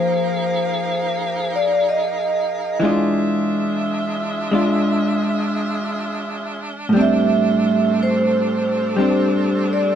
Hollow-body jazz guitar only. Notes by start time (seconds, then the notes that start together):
Already playing: F3 A#3 D#4 G#4
2.80 E3 G#3 D4
2.85 F4
4.51 G#3 D4 F4
6.89 A2 G3
6.97 C4 D4
8.96 G3 C4 D4